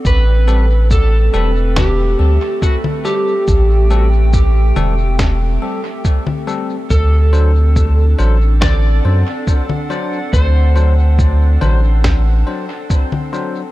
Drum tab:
SH |x-x-x-x-x---x-x-|x-x-x-x-x---x-x-|x-x-x-x-x---x-x-|x-x-x-x-x---x-x-|
SD |--------o-------|--------o-------|--------o-------|--------o-------|
CG |--------O----O--|------O------O--|--------O----O--|------O------O--|
BD |o---o---o---o---|o---o---o---o---|o---o---o---o---|o---o---o---o---|